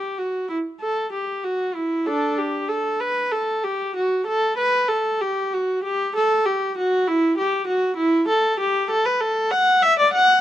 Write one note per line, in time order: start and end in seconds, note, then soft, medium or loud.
0.00 0.18 G4 medium
0.18 0.50 F#4 medium
0.49 0.57 E4 medium
0.81 1.12 A4 medium
1.13 1.43 G4 medium
1.44 1.75 F#4 medium
1.75 2.07 E4 medium
2.06 2.35 D4 medium
2.06 2.38 A4 medium
2.38 2.69 G4 medium
2.69 3.00 A4 medium
3.00 3.32 B4 medium
3.31 3.64 A4 medium
3.64 3.96 G4 medium
3.96 4.26 F#4 medium
4.27 4.58 A4 medium
4.58 4.89 B4 medium
4.89 5.21 A4 medium
5.21 5.53 G4 medium
5.53 5.84 F#4 medium
5.84 6.14 G4 medium
6.16 6.45 A4 medium
6.46 6.76 G4 medium
6.78 7.07 F#4 medium
7.07 7.37 E4 medium
7.38 7.67 G4 medium
7.67 7.96 F#4 medium
7.96 8.26 E4 medium
8.28 8.58 A4 medium
8.60 8.89 G4 medium
8.90 9.05 A4 medium
9.05 9.20 B4 medium
9.21 9.51 A4 medium
9.51 9.82 F#5 medium
9.82 9.97 E5 medium
9.99 10.13 D5 medium
10.13 10.41 F#5 medium